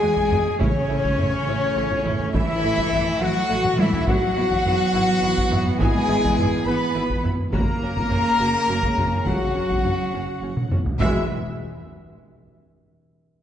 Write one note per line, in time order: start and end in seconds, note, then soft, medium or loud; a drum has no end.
0.00 0.09 E2 medium
0.00 0.56 F#3 loud
0.00 0.56 G#3 medium
0.00 0.60 G#3 loud
0.00 0.10 G#3 medium
0.00 0.09 F#4 medium
0.00 0.58 G#4 loud
0.00 0.60 G#4 loud
0.00 0.57 G#5 loud
0.00 0.59 G#5 loud
0.17 taiko medium
0.30 0.38 E2 medium
0.30 0.40 G#3 medium
0.30 0.39 F#4 medium
0.30 taiko low-mid medium
0.46 taiko low-mid medium
0.59 0.67 A1 loud
0.59 2.29 C#3 loud
0.59 4.03 E3 loud
0.59 0.67 A3 medium
0.59 4.03 A3 medium
0.59 2.29 C#4 loud
0.59 2.30 C#4 loud
0.59 0.68 E4 loud
0.59 2.29 C#5 loud
0.59 2.30 C#5 loud
0.59 taiko loud
0.88 0.97 A1 medium
0.88 0.96 A3 medium
0.88 0.96 E4 medium
1.04 taiko medium
1.18 1.26 A1 medium
1.18 1.26 A3 medium
1.18 1.27 E4 medium
1.18 taiko low-mid medium
1.46 1.54 A1 medium
1.46 1.55 A3 medium
1.46 1.55 E4 medium
1.75 1.83 A1 medium
1.75 1.84 A3 medium
1.75 1.84 E4 medium
1.90 taiko medium
2.04 2.13 A1 medium
2.04 2.12 A3 medium
2.04 2.12 E4 medium
2.04 taiko low-mid medium
2.20 taiko low-mid medium
2.33 2.42 A1 loud
2.33 3.18 E3 loud
2.33 2.41 A3 loud
2.33 2.41 E4 loud
2.33 3.19 E4 loud
2.33 3.20 E5 loud
2.33 3.18 E5 loud
2.33 taiko loud
2.63 2.71 A1 medium
2.63 2.71 A3 medium
2.63 2.71 E4 medium
2.78 taiko medium
2.91 2.99 A1 medium
2.91 3.00 A3 medium
2.91 3.00 E4 medium
2.91 taiko low-mid medium
3.20 3.28 A1 loud
3.20 3.78 F#3 loud
3.20 3.28 A3 medium
3.20 3.29 E4 medium
3.20 3.78 F#4 loud
3.20 3.77 F#4 loud
3.20 3.78 F#5 loud
3.20 3.79 F#5 loud
3.49 3.57 A1 medium
3.49 3.57 A3 medium
3.49 3.57 E4 medium
3.64 taiko mid medium
3.78 3.86 A1 medium
3.78 4.07 E3 loud
3.78 3.87 A3 medium
3.78 4.07 E4 loud
3.78 3.87 E4 medium
3.78 4.08 E4 loud
3.78 4.07 E5 loud
3.78 4.08 E5 medium
3.78 taiko high loud
3.93 taiko low loud
4.05 4.14 G#1 loud
4.05 7.36 E3 loud
4.05 5.77 F#3 loud
4.05 7.36 B3 loud
4.05 4.16 B3 loud
4.05 4.16 E4 loud
4.05 5.62 F#4 loud
4.05 5.64 F#4 loud
4.05 5.48 F#5 loud
4.05 5.77 F#5 loud
4.05 5.80 F#5 loud
4.05 taiko loud
4.36 4.44 G#1 medium
4.36 4.45 B3 medium
4.36 4.45 E4 medium
4.51 taiko medium
4.65 4.73 G#1 loud
4.65 4.74 B3 medium
4.65 4.74 E4 medium
4.65 taiko low-mid medium
4.93 5.02 G#1 medium
4.93 5.02 B3 medium
4.93 5.01 E4 medium
5.22 5.30 G#1 medium
5.22 5.30 B3 medium
5.22 5.30 E4 medium
5.37 taiko medium
5.50 5.59 G#1 medium
5.50 5.58 B3 medium
5.50 5.59 E4 medium
5.50 taiko low-mid medium
5.66 taiko low-mid medium
5.79 5.87 G#1 loud
5.79 6.67 G#3 loud
5.79 5.88 B3 loud
5.79 5.88 E4 medium
5.79 6.65 G#4 loud
5.79 6.66 G#4 loud
5.79 6.65 G#5 loud
5.79 taiko loud
6.08 6.16 G#1 medium
6.08 6.16 B3 medium
6.08 6.16 E4 medium
6.24 taiko loud
6.37 6.45 G#1 medium
6.37 6.45 B3 medium
6.37 6.45 E4 medium
6.37 taiko low-mid medium
6.66 6.74 G#1 medium
6.66 6.74 B3 medium
6.66 7.24 B3 loud
6.66 6.74 E4 medium
6.66 7.24 B4 loud
6.66 7.24 B5 loud
6.66 7.23 B5 loud
6.66 7.24 B5 loud
6.94 7.02 G#1 medium
6.94 7.03 B3 medium
6.94 7.03 E4 medium
7.10 taiko medium
7.23 7.31 G#1 medium
7.23 7.32 B3 medium
7.23 7.31 E4 medium
7.23 taiko low-mid medium
7.39 taiko low-mid medium
7.52 7.60 F#1 loud
7.52 10.67 C#3 loud
7.52 9.23 A#3 loud
7.52 7.60 C#4 medium
7.52 10.67 C#4 loud
7.52 7.61 F#4 loud
7.52 9.23 A#4 loud
7.52 9.22 A#5 loud
7.52 9.23 A#5 loud
7.52 taiko loud
7.80 7.88 F#1 medium
7.80 7.90 C#4 medium
7.80 7.91 F#4 medium
7.97 taiko medium
8.10 8.19 F#1 medium
8.10 8.18 C#4 medium
8.10 8.18 F#4 medium
8.10 taiko low-mid medium
8.39 8.47 F#1 medium
8.39 8.48 C#4 medium
8.39 8.48 F#4 medium
8.54 taiko rim soft
8.68 8.76 F#1 medium
8.68 8.76 C#4 medium
8.68 8.76 F#4 medium
8.83 taiko medium
8.97 9.05 F#1 medium
8.97 9.05 C#4 medium
8.97 9.05 F#4 medium
8.97 taiko low-mid medium
9.12 taiko low-mid medium
9.26 9.34 F#1 medium
9.26 10.72 F#3 medium
9.26 9.34 C#4 medium
9.26 9.34 F#4 medium
9.26 10.68 F#4 loud
9.26 10.69 F#4 medium
9.26 10.68 F#5 medium
9.26 10.71 F#5 medium
9.26 taiko loud
9.54 9.63 F#1 medium
9.54 9.63 C#4 medium
9.54 9.62 F#4 medium
9.70 taiko medium
9.83 9.92 F#1 medium
9.83 9.91 C#4 medium
9.83 9.91 F#4 medium
9.83 taiko low-mid medium
10.13 10.21 F#1 medium
10.13 10.21 C#4 medium
10.13 10.21 F#4 medium
10.42 10.50 F#1 medium
10.42 10.50 C#4 medium
10.42 10.50 F#4 medium
10.57 taiko mid medium
10.70 10.78 F#1 medium
10.70 10.80 C#4 medium
10.70 10.79 F#4 medium
10.70 taiko low-mid loud
10.86 taiko low loud
10.99 11.32 E1 loud
10.99 11.27 E2 loud
10.99 11.33 E3 medium
10.99 11.25 F#3 loud
10.99 11.32 G#3 loud
10.99 11.25 G#3 loud
10.99 11.32 F#4 loud
10.99 11.33 B4 medium
10.99 11.24 E5 loud
10.99 11.32 E5 loud
10.99 11.33 E5 loud
10.99 11.25 E5 loud
10.99 taiko loud